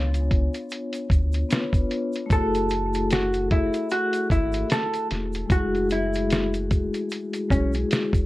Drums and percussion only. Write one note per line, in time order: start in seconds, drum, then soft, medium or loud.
0.14 closed hi-hat soft
0.14 shaker soft
0.31 kick medium
0.31 closed hi-hat medium
0.54 closed hi-hat soft
0.54 shaker soft
0.70 closed hi-hat medium
0.70 shaker medium
0.93 closed hi-hat soft
0.93 shaker soft
1.10 kick medium
1.10 closed hi-hat medium
1.10 shaker soft
1.33 closed hi-hat soft
1.33 shaker soft
1.51 snare loud
1.51 closed hi-hat medium
1.51 shaker medium
1.73 kick loud
1.73 closed hi-hat soft
1.73 shaker soft
1.91 closed hi-hat medium
2.12 closed hi-hat soft
2.12 shaker soft
2.30 kick loud
2.30 closed hi-hat medium
2.30 shaker medium
2.54 closed hi-hat soft
2.54 shaker soft
2.69 closed hi-hat medium
2.69 shaker soft
2.94 closed hi-hat medium
2.94 shaker soft
3.10 snare loud
3.10 closed hi-hat medium
3.10 shaker medium
3.34 closed hi-hat soft
3.34 shaker soft
3.51 kick medium
3.51 closed hi-hat medium
3.73 closed hi-hat soft
3.73 shaker soft
3.90 closed hi-hat medium
3.90 shaker medium
4.13 closed hi-hat medium
4.13 shaker medium
4.30 kick medium
4.30 closed hi-hat medium
4.30 shaker medium
4.52 closed hi-hat soft
4.52 shaker soft
4.70 snare loud
4.70 closed hi-hat medium
4.70 shaker medium
4.94 closed hi-hat soft
4.94 shaker soft
5.11 snare soft
5.11 closed hi-hat medium
5.33 closed hi-hat soft
5.33 shaker soft
5.50 kick loud
5.50 closed hi-hat loud
5.50 shaker medium
5.75 closed hi-hat soft
5.75 shaker soft
5.89 closed hi-hat medium
5.89 shaker soft
6.13 closed hi-hat medium
6.13 shaker soft
6.30 snare loud
6.30 closed hi-hat medium
6.30 shaker medium
6.54 closed hi-hat soft
6.54 shaker soft
6.71 kick medium
6.71 closed hi-hat medium
6.71 shaker soft
6.94 closed hi-hat soft
6.94 shaker soft
7.10 closed hi-hat medium
7.10 shaker medium
7.33 closed hi-hat medium
7.33 shaker soft
7.50 kick medium
7.50 closed hi-hat medium
7.50 shaker soft
7.73 closed hi-hat soft
7.73 shaker soft
7.91 snare loud
7.91 closed hi-hat medium
7.91 shaker medium
8.13 kick loud
8.13 closed hi-hat medium
8.13 shaker medium